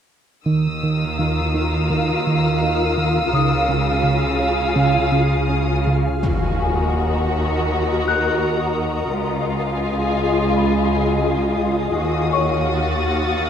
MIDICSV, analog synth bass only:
0, 0, Header, 1, 2, 480
1, 0, Start_track
1, 0, Key_signature, -6, "minor"
1, 0, Tempo, 717703
1, 306, Time_signature, 4, 2, 24, 8
1, 3182, Tempo, 731707
1, 5102, Tempo, 714286
1, 9007, End_track
2, 0, Start_track
2, 0, Title_t, "Analog synth bass"
2, 0, Program_c, 0, 38
2, 307, Note_on_c, 0, 51, 53
2, 453, Note_off_c, 0, 51, 0
2, 557, Note_on_c, 0, 51, 38
2, 700, Note_off_c, 0, 51, 0
2, 796, Note_on_c, 0, 51, 41
2, 939, Note_off_c, 0, 51, 0
2, 1032, Note_on_c, 0, 63, 46
2, 1176, Note_off_c, 0, 63, 0
2, 1272, Note_on_c, 0, 51, 58
2, 1416, Note_off_c, 0, 51, 0
2, 1517, Note_on_c, 0, 51, 35
2, 1658, Note_off_c, 0, 51, 0
2, 1756, Note_on_c, 0, 63, 38
2, 1897, Note_off_c, 0, 63, 0
2, 1989, Note_on_c, 0, 51, 40
2, 2132, Note_off_c, 0, 51, 0
2, 2228, Note_on_c, 0, 49, 56
2, 2370, Note_off_c, 0, 49, 0
2, 2467, Note_on_c, 0, 49, 41
2, 2608, Note_off_c, 0, 49, 0
2, 2698, Note_on_c, 0, 49, 41
2, 2843, Note_off_c, 0, 49, 0
2, 2940, Note_on_c, 0, 61, 45
2, 3085, Note_off_c, 0, 61, 0
2, 3182, Note_on_c, 0, 49, 69
2, 3326, Note_off_c, 0, 49, 0
2, 3418, Note_on_c, 0, 49, 41
2, 3563, Note_off_c, 0, 49, 0
2, 3664, Note_on_c, 0, 61, 41
2, 3809, Note_off_c, 0, 61, 0
2, 3912, Note_on_c, 0, 49, 40
2, 4055, Note_off_c, 0, 49, 0
2, 9007, End_track
0, 0, End_of_file